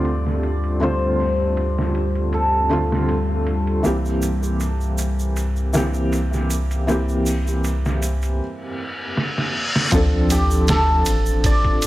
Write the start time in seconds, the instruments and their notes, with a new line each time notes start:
Already playing: sub bass D2, felt piano D3 A3 C4 F4, analog synth pad G3 G4, hammered dulcimer D5
0.05 ride
0.27 snare
0.43 ride
0.64 ride
0.80 felt piano D3 A3 C4 F4, hammered dulcimer C5, ride
1.19 open hi-hat
1.57 ride
1.78 snare
1.95 ride
2.15 ride
2.33 hammered dulcimer A4, ride
2.69 felt piano D3 A3 C4 F4, ride
2.92 snare
3.09 ride
3.47 ride
3.67 ride
3.83 sub bass C2, felt piano E3 A#3 C4 G4, ride, shaker
4.05 shaker
4.22 ride, shaker
4.43 shaker
4.60 ride, shaker
4.81 shaker
4.98 ride, shaker
5.19 shaker
5.36 ride, shaker
5.56 shaker
5.73 felt piano E3 A#3 C4 G4, snare, ride, shaker
5.94 shaker
6.12 ride, shaker
6.33 snare, shaker
6.50 ride, shaker
6.71 ride, shaker
6.87 felt piano E3 A#3 C4 G4, ride, shaker
7.09 shaker
7.26 open hi-hat, shaker
7.47 shaker
7.64 ride, shaker
7.85 snare, shaker
8.02 ride, shaker
8.22 ride, shaker
8.40 reverse cymbal
9.17 snare
9.38 snare
9.76 snare
9.92 sub bass D2, felt piano F3 C4 D4 A4, kick, ride, sub drop, shaker
10.30 hammered dulcimer G4, ride, shaker
10.51 shaker
10.67 hammered dulcimer A4, snare, ride, shaker
11.06 sub bass A1, ride, shaker
11.26 shaker
11.44 hammered dulcimer D5, kick, ride, shaker
11.65 kick
11.82 sub bass C2, ride, shaker